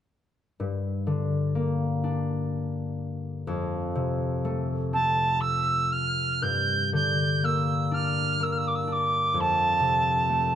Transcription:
0.60 harp G2
1.07 harp D3
1.55 harp A#3
2.04 harp D4
3.47 harp F2
3.95 harp C3
4.45 harp A3
4.93 harp C4, tin whistle A5
5.41 tin whistle E6
5.92 tin whistle F6
6.42 harp G2, tin whistle G6
6.93 harp D3, tin whistle G6
7.43 harp A#3, tin whistle E6
7.91 harp D4, tin whistle F6
8.40 harp A#3, tin whistle E6
8.52 tin whistle F6
8.58 tin whistle E6
8.67 tin whistle D6
8.75 tin whistle E6
8.81 tin whistle E6
8.87 harp D4
8.92 tin whistle D6
9.34 harp F2
9.40 tin whistle A5
9.80 harp C3
10.29 harp A3

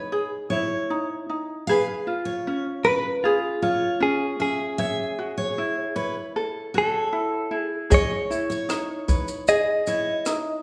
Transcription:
Already playing: ukulele D#4 E4 C#5
0.12 ukulele G#4
0.50 ukulele E4, steel-string acoustic guitar C#5
0.90 ukulele D#4
1.30 ukulele D#4
1.67 ukulele G#4 B4, steel-string acoustic guitar F5
2.07 ukulele F4
2.25 steel-string acoustic guitar C#5
2.47 ukulele C#4
2.84 steel-string acoustic guitar B4, clean electric guitar B4, ukulele B4
3.24 clean electric guitar F4, ukulele G#4
3.62 ukulele F4, steel-string acoustic guitar C#5
4.00 ukulele C#4, clean electric guitar G#4
4.40 ukulele C#4, clean electric guitar G#4, steel-string acoustic guitar E5
4.78 ukulele C#5, steel-string acoustic guitar E5
5.19 ukulele F#4
5.38 steel-string acoustic guitar C#5
5.58 ukulele E4
5.96 steel-string acoustic guitar B4, ukulele C#5
6.36 ukulele A4
6.74 ukulele F#4, clean electric guitar A4, steel-string acoustic guitar C#5
7.12 ukulele E4
7.51 ukulele E4
7.56 clean electric guitar G#4
7.90 ukulele G#4 C#5, steel-string acoustic guitar D#5, kick, shaker
7.94 clean electric guitar C#5
8.30 ukulele E4, shaker
8.50 steel-string acoustic guitar C#5, shaker
8.69 ukulele D#4, cross-stick, shaker
9.08 steel-string acoustic guitar B4, ukulele C#5, kick, shaker
9.28 shaker
9.48 ukulele G#4, clean electric guitar D#5, shaker
9.87 ukulele E4, steel-string acoustic guitar C#5, shaker
10.26 ukulele D#4, cross-stick, shaker

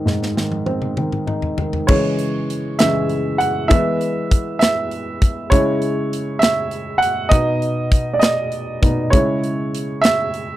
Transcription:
Already playing: grand piano G#2 D#3 C4 D#4
0.05 grand piano G#2, snare
0.23 snare
0.36 grand piano D#3, snare
0.52 high tom
0.66 grand piano C4, high tom
0.82 mid tom
0.97 grand piano D#3, mid tom
1.12 mid tom
1.27 grand piano D#4, mid tom
1.42 floor tom
1.58 grand piano D#3, floor tom
1.73 floor tom
1.87 grand piano C#3 E3 G#3 C#5, kick, crash
2.19 closed hi-hat
2.50 closed hi-hat
2.79 grand piano C#3 E3 G#3 E5, snare, closed hi-hat
3.10 closed hi-hat
3.38 grand piano F#5, closed hi-hat
3.68 grand piano E3 G#3 B3 E5, kick, closed hi-hat
4.01 closed hi-hat
4.31 kick, closed hi-hat
4.59 grand piano E5, snare, closed hi-hat
4.91 closed hi-hat
5.22 kick, closed hi-hat
5.50 grand piano C#3 G#3 E4 C#5, kick, closed hi-hat
5.82 closed hi-hat
6.13 closed hi-hat
6.39 grand piano E5, snare, closed hi-hat
6.71 closed hi-hat
6.98 grand piano F#5
7.02 closed hi-hat
7.29 grand piano B2 B3 D#4 D#5, kick, closed hi-hat
7.62 closed hi-hat
7.92 kick, closed hi-hat
8.13 grand piano D5
8.19 grand piano D#5, snare, closed hi-hat
8.52 closed hi-hat
8.82 grand piano B2 B3 D#4, kick, closed hi-hat
9.10 grand piano C#3 G#3 E4 C#5, kick, closed hi-hat
9.44 closed hi-hat
9.75 closed hi-hat
10.01 grand piano E5, snare, closed hi-hat
10.34 closed hi-hat

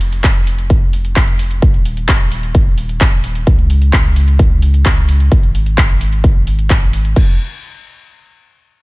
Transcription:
Already playing: sub bass F1
0.01 open hi-hat
0.12 closed hi-hat
0.24 kick, clap, closed hi-hat
0.47 open hi-hat
0.58 closed hi-hat
0.70 kick, closed hi-hat
0.93 open hi-hat
1.05 closed hi-hat
1.16 kick, clap, closed hi-hat
1.28 closed hi-hat
1.39 open hi-hat
1.51 closed hi-hat
1.62 sub bass D#1, kick, closed hi-hat
1.74 closed hi-hat
1.85 open hi-hat
1.97 closed hi-hat
2.09 kick, clap, closed hi-hat
2.32 open hi-hat
2.43 closed hi-hat
2.55 kick, closed hi-hat
2.78 open hi-hat
2.89 closed hi-hat
3.01 kick, clap, closed hi-hat
3.12 closed hi-hat
3.24 open hi-hat
3.35 closed hi-hat
3.47 sub bass C#2, kick, closed hi-hat
3.59 closed hi-hat
3.70 open hi-hat
3.82 closed hi-hat
3.93 kick, clap, closed hi-hat
4.16 open hi-hat
4.28 closed hi-hat
4.39 kick, closed hi-hat
4.62 open hi-hat
4.74 closed hi-hat
4.85 kick, clap, closed hi-hat
4.97 closed hi-hat
5.09 open hi-hat
5.20 closed hi-hat
5.32 sub bass G#1, kick, closed hi-hat
5.43 closed hi-hat
5.55 open hi-hat
5.66 closed hi-hat
5.78 kick, clap, closed hi-hat
5.89 closed hi-hat
6.01 open hi-hat
6.13 closed hi-hat
6.24 kick, closed hi-hat
6.47 open hi-hat
6.59 closed hi-hat
6.70 kick, clap, closed hi-hat
6.82 closed hi-hat
6.93 open hi-hat
7.05 closed hi-hat
7.16 sub bass F1, kick, crash

